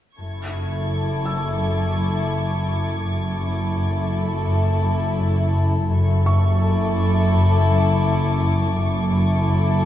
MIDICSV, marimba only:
0, 0, Header, 1, 2, 480
1, 0, Start_track
1, 0, Key_signature, 3, "minor"
1, 0, Tempo, 714286
1, 132, Time_signature, 4, 2, 24, 8
1, 6620, End_track
2, 0, Start_track
2, 0, Title_t, "Marimba"
2, 0, Program_c, 0, 12
2, 125, Note_on_c, 0, 42, 30
2, 271, Note_off_c, 0, 42, 0
2, 363, Note_on_c, 0, 42, 20
2, 510, Note_off_c, 0, 42, 0
2, 605, Note_on_c, 0, 42, 22
2, 751, Note_off_c, 0, 42, 0
2, 840, Note_on_c, 0, 42, 23
2, 988, Note_off_c, 0, 42, 0
2, 1079, Note_on_c, 0, 42, 32
2, 1227, Note_off_c, 0, 42, 0
2, 1328, Note_on_c, 0, 54, 22
2, 1473, Note_off_c, 0, 54, 0
2, 1560, Note_on_c, 0, 42, 25
2, 1707, Note_off_c, 0, 42, 0
2, 1802, Note_on_c, 0, 42, 25
2, 1949, Note_off_c, 0, 42, 0
2, 2049, Note_on_c, 0, 42, 35
2, 2194, Note_off_c, 0, 42, 0
2, 2284, Note_on_c, 0, 42, 27
2, 2431, Note_off_c, 0, 42, 0
2, 2530, Note_on_c, 0, 42, 29
2, 2674, Note_off_c, 0, 42, 0
2, 2768, Note_on_c, 0, 42, 30
2, 2913, Note_off_c, 0, 42, 0
2, 3008, Note_on_c, 0, 42, 44
2, 3153, Note_off_c, 0, 42, 0
2, 3250, Note_on_c, 0, 54, 32
2, 3395, Note_off_c, 0, 54, 0
2, 3489, Note_on_c, 0, 42, 38
2, 3634, Note_off_c, 0, 42, 0
2, 3734, Note_on_c, 0, 42, 32
2, 3877, Note_off_c, 0, 42, 0
2, 3966, Note_on_c, 0, 42, 53
2, 4112, Note_off_c, 0, 42, 0
2, 4212, Note_on_c, 0, 42, 35
2, 4356, Note_off_c, 0, 42, 0
2, 4451, Note_on_c, 0, 42, 38
2, 4596, Note_off_c, 0, 42, 0
2, 4687, Note_on_c, 0, 42, 42
2, 4832, Note_off_c, 0, 42, 0
2, 4936, Note_on_c, 0, 42, 58
2, 5079, Note_off_c, 0, 42, 0
2, 5173, Note_on_c, 0, 54, 40
2, 5317, Note_off_c, 0, 54, 0
2, 5421, Note_on_c, 0, 42, 39
2, 5563, Note_off_c, 0, 42, 0
2, 5654, Note_on_c, 0, 42, 35
2, 5797, Note_off_c, 0, 42, 0
2, 5893, Note_on_c, 0, 42, 49
2, 6037, Note_off_c, 0, 42, 0
2, 6125, Note_on_c, 0, 42, 37
2, 6271, Note_off_c, 0, 42, 0
2, 6365, Note_on_c, 0, 42, 34
2, 6511, Note_off_c, 0, 42, 0
2, 6620, End_track
0, 0, End_of_file